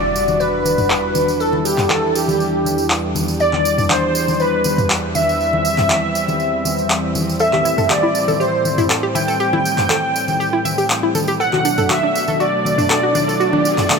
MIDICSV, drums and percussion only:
0, 0, Header, 1, 2, 480
1, 0, Start_track
1, 0, Key_signature, 1, "minor"
1, 0, Tempo, 500000
1, 1346, Time_signature, 4, 2, 24, 8
1, 13433, End_track
2, 0, Start_track
2, 0, Title_t, "Drums"
2, 150, Note_on_c, 9, 54, 89
2, 246, Note_off_c, 9, 54, 0
2, 269, Note_on_c, 9, 54, 51
2, 270, Note_on_c, 9, 63, 93
2, 365, Note_off_c, 9, 54, 0
2, 366, Note_off_c, 9, 63, 0
2, 389, Note_on_c, 9, 54, 39
2, 485, Note_off_c, 9, 54, 0
2, 626, Note_on_c, 9, 63, 64
2, 630, Note_on_c, 9, 54, 83
2, 722, Note_off_c, 9, 63, 0
2, 726, Note_off_c, 9, 54, 0
2, 750, Note_on_c, 9, 54, 47
2, 751, Note_on_c, 9, 45, 79
2, 846, Note_off_c, 9, 54, 0
2, 847, Note_off_c, 9, 45, 0
2, 862, Note_on_c, 9, 54, 40
2, 865, Note_on_c, 9, 39, 115
2, 958, Note_off_c, 9, 54, 0
2, 961, Note_off_c, 9, 39, 0
2, 1103, Note_on_c, 9, 54, 75
2, 1105, Note_on_c, 9, 63, 91
2, 1199, Note_off_c, 9, 54, 0
2, 1201, Note_off_c, 9, 63, 0
2, 1232, Note_on_c, 9, 54, 51
2, 1328, Note_off_c, 9, 54, 0
2, 1348, Note_on_c, 9, 54, 40
2, 1444, Note_off_c, 9, 54, 0
2, 1469, Note_on_c, 9, 63, 87
2, 1565, Note_off_c, 9, 63, 0
2, 1586, Note_on_c, 9, 54, 91
2, 1682, Note_off_c, 9, 54, 0
2, 1710, Note_on_c, 9, 39, 37
2, 1710, Note_on_c, 9, 45, 82
2, 1714, Note_on_c, 9, 54, 43
2, 1806, Note_off_c, 9, 39, 0
2, 1806, Note_off_c, 9, 45, 0
2, 1810, Note_off_c, 9, 54, 0
2, 1819, Note_on_c, 9, 54, 38
2, 1824, Note_on_c, 9, 39, 120
2, 1825, Note_on_c, 9, 63, 65
2, 1915, Note_off_c, 9, 54, 0
2, 1920, Note_off_c, 9, 39, 0
2, 1921, Note_off_c, 9, 63, 0
2, 2069, Note_on_c, 9, 54, 87
2, 2165, Note_off_c, 9, 54, 0
2, 2190, Note_on_c, 9, 63, 90
2, 2197, Note_on_c, 9, 54, 52
2, 2286, Note_off_c, 9, 63, 0
2, 2293, Note_off_c, 9, 54, 0
2, 2306, Note_on_c, 9, 54, 39
2, 2402, Note_off_c, 9, 54, 0
2, 2546, Note_on_c, 9, 63, 65
2, 2557, Note_on_c, 9, 54, 86
2, 2642, Note_off_c, 9, 63, 0
2, 2653, Note_off_c, 9, 54, 0
2, 2669, Note_on_c, 9, 54, 51
2, 2765, Note_off_c, 9, 54, 0
2, 2785, Note_on_c, 9, 39, 118
2, 2788, Note_on_c, 9, 54, 37
2, 2881, Note_off_c, 9, 39, 0
2, 2884, Note_off_c, 9, 54, 0
2, 3026, Note_on_c, 9, 63, 93
2, 3030, Note_on_c, 9, 54, 91
2, 3122, Note_off_c, 9, 63, 0
2, 3126, Note_off_c, 9, 54, 0
2, 3151, Note_on_c, 9, 54, 58
2, 3247, Note_off_c, 9, 54, 0
2, 3263, Note_on_c, 9, 54, 39
2, 3359, Note_off_c, 9, 54, 0
2, 3390, Note_on_c, 9, 39, 37
2, 3391, Note_on_c, 9, 63, 86
2, 3486, Note_off_c, 9, 39, 0
2, 3487, Note_off_c, 9, 63, 0
2, 3507, Note_on_c, 9, 54, 86
2, 3603, Note_off_c, 9, 54, 0
2, 3631, Note_on_c, 9, 45, 84
2, 3632, Note_on_c, 9, 54, 52
2, 3727, Note_off_c, 9, 45, 0
2, 3728, Note_off_c, 9, 54, 0
2, 3742, Note_on_c, 9, 54, 37
2, 3745, Note_on_c, 9, 39, 122
2, 3746, Note_on_c, 9, 63, 61
2, 3838, Note_off_c, 9, 54, 0
2, 3841, Note_off_c, 9, 39, 0
2, 3842, Note_off_c, 9, 63, 0
2, 3984, Note_on_c, 9, 54, 95
2, 4080, Note_off_c, 9, 54, 0
2, 4111, Note_on_c, 9, 54, 56
2, 4111, Note_on_c, 9, 63, 89
2, 4207, Note_off_c, 9, 54, 0
2, 4207, Note_off_c, 9, 63, 0
2, 4221, Note_on_c, 9, 54, 38
2, 4317, Note_off_c, 9, 54, 0
2, 4457, Note_on_c, 9, 54, 81
2, 4467, Note_on_c, 9, 63, 61
2, 4553, Note_off_c, 9, 54, 0
2, 4563, Note_off_c, 9, 63, 0
2, 4591, Note_on_c, 9, 45, 85
2, 4592, Note_on_c, 9, 54, 51
2, 4687, Note_off_c, 9, 45, 0
2, 4688, Note_off_c, 9, 54, 0
2, 4701, Note_on_c, 9, 54, 37
2, 4704, Note_on_c, 9, 39, 119
2, 4797, Note_off_c, 9, 54, 0
2, 4800, Note_off_c, 9, 39, 0
2, 4944, Note_on_c, 9, 54, 80
2, 4947, Note_on_c, 9, 63, 86
2, 5040, Note_off_c, 9, 54, 0
2, 5043, Note_off_c, 9, 63, 0
2, 5080, Note_on_c, 9, 54, 51
2, 5176, Note_off_c, 9, 54, 0
2, 5190, Note_on_c, 9, 54, 40
2, 5286, Note_off_c, 9, 54, 0
2, 5311, Note_on_c, 9, 63, 88
2, 5407, Note_off_c, 9, 63, 0
2, 5422, Note_on_c, 9, 54, 79
2, 5518, Note_off_c, 9, 54, 0
2, 5549, Note_on_c, 9, 39, 34
2, 5551, Note_on_c, 9, 54, 47
2, 5552, Note_on_c, 9, 45, 86
2, 5645, Note_off_c, 9, 39, 0
2, 5647, Note_off_c, 9, 54, 0
2, 5648, Note_off_c, 9, 45, 0
2, 5658, Note_on_c, 9, 54, 40
2, 5664, Note_on_c, 9, 39, 115
2, 5667, Note_on_c, 9, 63, 60
2, 5754, Note_off_c, 9, 54, 0
2, 5760, Note_off_c, 9, 39, 0
2, 5763, Note_off_c, 9, 63, 0
2, 5906, Note_on_c, 9, 54, 80
2, 6002, Note_off_c, 9, 54, 0
2, 6031, Note_on_c, 9, 63, 89
2, 6035, Note_on_c, 9, 54, 52
2, 6127, Note_off_c, 9, 63, 0
2, 6131, Note_off_c, 9, 54, 0
2, 6141, Note_on_c, 9, 54, 40
2, 6237, Note_off_c, 9, 54, 0
2, 6385, Note_on_c, 9, 63, 62
2, 6386, Note_on_c, 9, 54, 82
2, 6481, Note_off_c, 9, 63, 0
2, 6482, Note_off_c, 9, 54, 0
2, 6514, Note_on_c, 9, 54, 48
2, 6610, Note_off_c, 9, 54, 0
2, 6617, Note_on_c, 9, 54, 37
2, 6625, Note_on_c, 9, 39, 108
2, 6713, Note_off_c, 9, 54, 0
2, 6721, Note_off_c, 9, 39, 0
2, 6865, Note_on_c, 9, 54, 82
2, 6866, Note_on_c, 9, 63, 85
2, 6961, Note_off_c, 9, 54, 0
2, 6962, Note_off_c, 9, 63, 0
2, 7002, Note_on_c, 9, 54, 54
2, 7098, Note_off_c, 9, 54, 0
2, 7098, Note_on_c, 9, 54, 40
2, 7194, Note_off_c, 9, 54, 0
2, 7230, Note_on_c, 9, 39, 34
2, 7232, Note_on_c, 9, 63, 84
2, 7326, Note_off_c, 9, 39, 0
2, 7328, Note_off_c, 9, 63, 0
2, 7347, Note_on_c, 9, 54, 88
2, 7443, Note_off_c, 9, 54, 0
2, 7469, Note_on_c, 9, 54, 45
2, 7471, Note_on_c, 9, 45, 83
2, 7565, Note_off_c, 9, 54, 0
2, 7567, Note_off_c, 9, 45, 0
2, 7584, Note_on_c, 9, 39, 114
2, 7585, Note_on_c, 9, 63, 59
2, 7586, Note_on_c, 9, 54, 39
2, 7680, Note_off_c, 9, 39, 0
2, 7681, Note_off_c, 9, 63, 0
2, 7682, Note_off_c, 9, 54, 0
2, 7822, Note_on_c, 9, 54, 78
2, 7918, Note_off_c, 9, 54, 0
2, 7950, Note_on_c, 9, 54, 50
2, 7951, Note_on_c, 9, 63, 86
2, 8046, Note_off_c, 9, 54, 0
2, 8047, Note_off_c, 9, 63, 0
2, 8071, Note_on_c, 9, 54, 36
2, 8167, Note_off_c, 9, 54, 0
2, 8305, Note_on_c, 9, 54, 77
2, 8305, Note_on_c, 9, 63, 59
2, 8401, Note_off_c, 9, 54, 0
2, 8401, Note_off_c, 9, 63, 0
2, 8429, Note_on_c, 9, 54, 45
2, 8430, Note_on_c, 9, 45, 80
2, 8525, Note_off_c, 9, 54, 0
2, 8526, Note_off_c, 9, 45, 0
2, 8544, Note_on_c, 9, 39, 105
2, 8547, Note_on_c, 9, 54, 35
2, 8640, Note_off_c, 9, 39, 0
2, 8643, Note_off_c, 9, 54, 0
2, 8784, Note_on_c, 9, 63, 84
2, 8788, Note_on_c, 9, 54, 82
2, 8880, Note_off_c, 9, 63, 0
2, 8884, Note_off_c, 9, 54, 0
2, 8911, Note_on_c, 9, 54, 48
2, 9007, Note_off_c, 9, 54, 0
2, 9025, Note_on_c, 9, 54, 35
2, 9121, Note_off_c, 9, 54, 0
2, 9150, Note_on_c, 9, 63, 85
2, 9246, Note_off_c, 9, 63, 0
2, 9268, Note_on_c, 9, 54, 83
2, 9364, Note_off_c, 9, 54, 0
2, 9388, Note_on_c, 9, 54, 48
2, 9389, Note_on_c, 9, 39, 34
2, 9390, Note_on_c, 9, 45, 76
2, 9484, Note_off_c, 9, 54, 0
2, 9485, Note_off_c, 9, 39, 0
2, 9486, Note_off_c, 9, 45, 0
2, 9504, Note_on_c, 9, 39, 113
2, 9505, Note_on_c, 9, 63, 60
2, 9508, Note_on_c, 9, 54, 32
2, 9600, Note_off_c, 9, 39, 0
2, 9601, Note_off_c, 9, 63, 0
2, 9604, Note_off_c, 9, 54, 0
2, 9750, Note_on_c, 9, 54, 85
2, 9846, Note_off_c, 9, 54, 0
2, 9869, Note_on_c, 9, 54, 50
2, 9870, Note_on_c, 9, 63, 86
2, 9965, Note_off_c, 9, 54, 0
2, 9966, Note_off_c, 9, 63, 0
2, 9991, Note_on_c, 9, 54, 35
2, 10087, Note_off_c, 9, 54, 0
2, 10224, Note_on_c, 9, 63, 58
2, 10226, Note_on_c, 9, 54, 83
2, 10320, Note_off_c, 9, 63, 0
2, 10322, Note_off_c, 9, 54, 0
2, 10349, Note_on_c, 9, 54, 54
2, 10445, Note_off_c, 9, 54, 0
2, 10464, Note_on_c, 9, 39, 102
2, 10472, Note_on_c, 9, 54, 39
2, 10560, Note_off_c, 9, 39, 0
2, 10568, Note_off_c, 9, 54, 0
2, 10703, Note_on_c, 9, 54, 88
2, 10705, Note_on_c, 9, 63, 83
2, 10799, Note_off_c, 9, 54, 0
2, 10801, Note_off_c, 9, 63, 0
2, 10825, Note_on_c, 9, 54, 51
2, 10921, Note_off_c, 9, 54, 0
2, 10952, Note_on_c, 9, 54, 36
2, 11048, Note_off_c, 9, 54, 0
2, 11068, Note_on_c, 9, 63, 84
2, 11069, Note_on_c, 9, 39, 35
2, 11164, Note_off_c, 9, 63, 0
2, 11165, Note_off_c, 9, 39, 0
2, 11183, Note_on_c, 9, 54, 87
2, 11279, Note_off_c, 9, 54, 0
2, 11306, Note_on_c, 9, 54, 44
2, 11309, Note_on_c, 9, 45, 80
2, 11402, Note_off_c, 9, 54, 0
2, 11405, Note_off_c, 9, 45, 0
2, 11424, Note_on_c, 9, 39, 114
2, 11424, Note_on_c, 9, 63, 58
2, 11433, Note_on_c, 9, 54, 33
2, 11520, Note_off_c, 9, 39, 0
2, 11520, Note_off_c, 9, 63, 0
2, 11529, Note_off_c, 9, 54, 0
2, 11669, Note_on_c, 9, 54, 82
2, 11765, Note_off_c, 9, 54, 0
2, 11785, Note_on_c, 9, 54, 52
2, 11790, Note_on_c, 9, 63, 85
2, 11881, Note_off_c, 9, 54, 0
2, 11886, Note_off_c, 9, 63, 0
2, 11906, Note_on_c, 9, 54, 37
2, 12002, Note_off_c, 9, 54, 0
2, 12145, Note_on_c, 9, 63, 60
2, 12156, Note_on_c, 9, 54, 84
2, 12241, Note_off_c, 9, 63, 0
2, 12252, Note_off_c, 9, 54, 0
2, 12271, Note_on_c, 9, 45, 76
2, 12274, Note_on_c, 9, 54, 49
2, 12367, Note_off_c, 9, 45, 0
2, 12370, Note_off_c, 9, 54, 0
2, 12384, Note_on_c, 9, 39, 108
2, 12384, Note_on_c, 9, 54, 34
2, 12480, Note_off_c, 9, 39, 0
2, 12480, Note_off_c, 9, 54, 0
2, 12624, Note_on_c, 9, 54, 78
2, 12626, Note_on_c, 9, 63, 89
2, 12720, Note_off_c, 9, 54, 0
2, 12722, Note_off_c, 9, 63, 0
2, 12757, Note_on_c, 9, 54, 51
2, 12853, Note_off_c, 9, 54, 0
2, 12869, Note_on_c, 9, 54, 37
2, 12965, Note_off_c, 9, 54, 0
2, 12990, Note_on_c, 9, 63, 87
2, 13086, Note_off_c, 9, 63, 0
2, 13106, Note_on_c, 9, 54, 83
2, 13202, Note_off_c, 9, 54, 0
2, 13230, Note_on_c, 9, 39, 36
2, 13230, Note_on_c, 9, 45, 80
2, 13230, Note_on_c, 9, 54, 49
2, 13326, Note_off_c, 9, 39, 0
2, 13326, Note_off_c, 9, 45, 0
2, 13326, Note_off_c, 9, 54, 0
2, 13342, Note_on_c, 9, 54, 34
2, 13345, Note_on_c, 9, 39, 117
2, 13345, Note_on_c, 9, 63, 64
2, 13433, Note_off_c, 9, 39, 0
2, 13433, Note_off_c, 9, 54, 0
2, 13433, Note_off_c, 9, 63, 0
2, 13433, End_track
0, 0, End_of_file